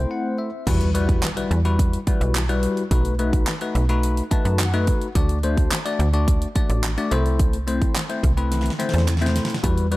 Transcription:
Already playing: A3 C4 E4 C5
0.11 F#5
0.38 E5
0.67 E2 G3 E4 F#4 B4, kick, closed hi-hat, crash, impact
0.81 closed hi-hat
0.94 G3 E4 F#4 B4, closed hi-hat
1.09 kick, closed hi-hat
1.23 snare, clap, closed hi-hat
1.36 G3 E4 F#4 B4, closed hi-hat
1.51 E2, closed hi-hat
1.65 G3 E4 F#4 B4, closed hi-hat
1.79 kick, closed hi-hat
1.93 closed hi-hat
2.07 G3 E4 F#4 B4, kick, closed hi-hat
2.21 B1, closed hi-hat
2.35 snare, clap, closed hi-hat
2.49 G3 E4 F#4 B4, closed hi-hat
2.63 closed hi-hat
2.77 closed hi-hat
2.91 B1 A3 D#4 F#4 B4, kick, closed hi-hat
3.05 closed hi-hat
3.19 A3 D#4 F#4 B4, closed hi-hat
3.33 kick, closed hi-hat
3.47 snare, clap, closed hi-hat
3.61 A3 D#4 F#4 B4, closed hi-hat
3.75 B1, closed hi-hat
3.89 A3 D#4 F#4 B4, closed hi-hat
4.03 closed hi-hat
4.17 closed hi-hat
4.31 A3 D#4 F#4 B4 A5, kick, closed hi-hat
4.45 F#2, closed hi-hat
4.59 F#5, snare, clap, closed hi-hat
4.73 A3 D#4 F#4 B4, closed hi-hat
4.87 kick, closed hi-hat
5.02 closed hi-hat
5.15 D2 A3 D4 F#4 D5, kick, closed hi-hat
5.29 closed hi-hat
5.43 A3 D4 F#4 C5, closed hi-hat
5.57 kick, closed hi-hat
5.71 snare, clap, closed hi-hat
5.85 A3 D4 F#4 D5, closed hi-hat
5.99 D2, closed hi-hat
6.13 A3 D4 F#4 D5, closed hi-hat
6.28 kick, closed hi-hat
6.42 closed hi-hat
6.55 A3 D4 F#4 D5, kick, closed hi-hat
6.70 A1, closed hi-hat
6.84 snare, clap, closed hi-hat
6.97 A3 D4 F#4 D5, closed hi-hat
7.11 C2 A3 C4 E4 C5, closed hi-hat
7.26 closed hi-hat
7.39 kick, closed hi-hat
7.53 closed hi-hat
7.67 A3 C4 E4 C5, closed hi-hat
7.82 kick, closed hi-hat
7.95 snare, clap, closed hi-hat
8.09 A3 C4 E4 C5, closed hi-hat
8.23 C2, kick, closed hi-hat
8.37 A3 C4 E4 B4, closed hi-hat
8.52 snare, closed hi-hat
8.61 snare
8.66 closed hi-hat
8.70 snare
8.79 A3 C4 E4 C5, snare, closed hi-hat
8.89 snare
8.94 E2, closed hi-hat
8.98 snare
9.08 snare, clap, closed hi-hat
9.17 snare
9.21 A3 C4 E4 C5, closed hi-hat
9.26 snare
9.36 snare, closed hi-hat
9.45 snare
9.50 closed hi-hat
9.54 snare
9.63 E2 G3 E4 F#4 B4, kick, closed hi-hat
9.78 closed hi-hat
9.91 G3 E4 F#4 B4, closed hi-hat

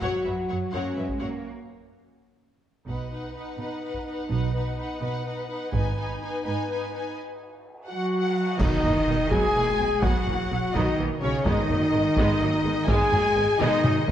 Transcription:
0.01 F#2 F#3 F#4 C#5 F#5, taiko
0.25 F#2 F#3 B4 E5
0.49 F#2 F#3 C#5 F#5
0.73 F#2 F#3 A#3 C#4 C#5 F#5
0.96 F#2 F#3 G#3 B4 E5
1.09 taiko
1.19 F#2 F#3 A#3 C#5 F#5
2.87 B1 B2 B3 D#4 B4 F#5, taiko
3.11 D#4 B4 F#5
3.35 D#4 B4 F#5
3.59 B2 D#4 B4 F#5
3.83 D#4 B4 F#5
3.94 taiko
4.07 D#4 B4 F#5
4.30 B1 B2 D#4 B4 F#5
4.53 D#4 B4 F#5
4.78 D#4 B4 F#5
5.02 B2 D#4 B4 F#5
5.26 D#4 B4 F#5
5.49 D#4 B4 F#5
5.73 G#1 G#2 B3 D#4 B4 G#5, taiko
5.97 D#4 B4 G#5
6.21 D#4 B4 G#5
6.44 G#2 D#4 B4 G#5
6.68 D#4 B4 G#5
6.92 D#4 B4 G#5
7.87 F#3 F#4 F#5
8.58 B1 D#3 F#3 B3 D#4 D#5, concert bass drum, taiko, crash
8.83 B1 E3 A#3, taiko low-mid
9.08 B1 F#3 B3
9.29 B1 F#3 G#3 B3 G#4 G#5, taiko
9.55 B1 E3 A#3
9.78 B1 F#3 B3
10.02 B1 F#3 B3 F#4 F#5, taiko
10.27 B1 E3 A#3, taiko low-mid
10.51 B1 F#3 B3
10.74 B1 D#3 F#3 B3 D#4 D#5, taiko
10.98 B1 E3 A#3
11.21 B1 C#3 F#3 B3 C#4 C#5
11.45 G#1 D#3 G#3 B3 D#4 D#5, taiko
11.69 G#1 F#3 A#3, taiko low-mid
11.93 G#1 G#3 B3
12.17 G#1 G#3 B3, taiko
12.40 G#1 F#3 A#3
12.64 G#1 G#3 B3
12.87 G#1 G#3 B3 G#4 G#5, taiko
13.12 G#1 F#3 A#3, taiko low-mid
13.36 G#1 G#3 B3
13.58 G#1 D#3 G#3 B3 D#4 D#5, taiko mid
13.84 G#1 F#3 A#3, taiko mid
14.07 G#1 G#3 B3, taiko low

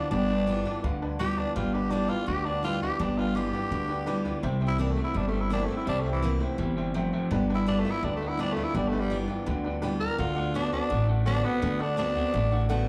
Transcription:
Already playing: G2 E3 B3 D4 F4
0.11 G1 G2 D3 G3 D4 B4 D5 G5
0.30 G2 D3 B4 D5 G5
0.47 G2 E3 G3 B3 F4 B4 D5 G5
0.65 G2 E3 B3 F4 B4 D5 G5
0.83 D2 G2 D3 B4 D5 F5
1.02 G2 D3 B4 D5 A5
1.19 G2 E3 G3 B3 F4 G4 B4 D5 G5
1.37 G2 E3 B3 D4 F4 B4 D5 G5
1.56 G1 G2 D3 G3 F4 B4 D5 G5
1.73 G2 D3 G4 B4 D5 G5
1.90 G2 E3 G3 B3 D4 F4 B4 D5 G5
2.08 G2 E3 B3 F4 B4 D5 G5
2.26 D2 G2 D3 G4 B4 D5 G5
2.45 G2 D3 D4 B4 D5 G5
2.63 G2 E3 G3 B3 F4 B4 D5 G5
2.80 G2 E3 B3 F4 G4 B4 D5 F5
2.99 G1 G2 D3 G3 D4 B4 D5 G5
3.18 G2 D3 F4 B4 D5 G5
3.35 G2 E3 G3 B3 F4 G4 B4 D5 F5
3.53 G2 E3 B3 F4 B4 D5 G5
3.71 D2 G2 D3 B4 D5 G5
3.89 G2 D3 B4 D5 G5
4.06 G2 E3 G3 B3 F4 B4 D5 G5
4.25 G2 E3 B3 F4 B4 D5 G5
4.43 C2 C3 G3 C5 E5 G5
4.60 C3 G3 C5 E5 G5
4.68 E4
4.78 C3 E3 A3 A#3 C4 D4 E4 C5 E5 G5
4.91 A3
4.96 C3 A3 C4 E4 C5 E5 A5
5.04 E4
5.14 G1 G2 C3 G3 D4 C5 E5 G5
5.28 A3
5.32 C3 G3 C5 E5 G5
5.41 E4
5.50 C3 E3 A3 A#3 C4 D4 E4 C5 E5 G5
5.65 C3 A3 E4
5.70 C4 C5 E5 G5
5.77 E4
5.85 C2 C3 G3 D4 C5 E5 G5
6.00 C3 A3
6.05 G3 C5 E5 G5
6.12 E3
6.22 C3 E3 A3 A#3 C4 E4 C5
6.40 C3 A3 C4 E4 C5 E5 G5
6.58 G1 C3 E3 G3 C5 E5 G5
6.77 C3 G3 C5 E5 G5
6.94 C3 F3 A3 C5 E5 G5 A#5
7.13 C3 A3 C5 E5 G5
7.31 G1 G2 D3 G3 B4 D5 G5
7.50 G2 D3 B4 D5 G5
7.55 E4
7.66 G2 E3 G3 B3 D4 F4 B4 D5 G5
7.80 A3
7.85 G2 E3 B3 F4 B4 D5 E5
7.91 E4
8.03 D2 G2 D3 D4 B4 D5 G5
8.16 A3
8.21 G2 D3 B4 D5 G5
8.29 E4
8.38 G2 E3 G3 B3 D4 F4 B4 D5 G5
8.53 A3 F4 B4 D5 F5
8.57 G2 E3 B3
8.64 E4
8.75 G1 G2 D3 G3 D4 B4 D5 G5
8.88 A3
8.92 G2 D3 B4 D5 G5
9.00 G3
9.10 G2 E3 G3 B3 F4 B4 D5 G5
9.28 G2 E3 B3 F4 B4 D5 G5
9.46 D2 G2 D3 B4 D5 G5
9.64 G2 D3 B4 D5 G5
9.82 G2 E3 G3 B3 F4 B4 D5 G5
10.00 G2 E3 B3 F4 A#4 B4 D5 G5
10.18 D2 D3 A3 F4 A4 D5 F#5
10.35 D3 A3 A4 D5 F#5
10.54 D3 A3 B3 C4 D4 F#4 A4 D5 F#5
10.72 D3 B3 C4 D4 F#4 A4 D5 F#5
10.89 A1 A2 D3 A3 A4 D5 F#5
11.08 D3 A3 A4 D5 F#5
11.25 D3 A3 B3 C4 D4 F#4 A4 D5 F#5
11.44 D3 B3 C4 F#4 A4 D5 F#5
11.62 D2 D3 A3 A4 D5 F#5
11.79 D3 A3 D4 A4 D5 F#5
11.97 D3 A3 B3 C4 D4 F#4 D5 E5
12.15 D3 B3 C4 F#4 A4 D5 F#5
12.33 A1 A2 D3 A3 A4 D5 F#5
12.51 D3 A3 A4 D5 F#5
12.69 D3 A3 B3 C4 F#4 A4 D5 F#5

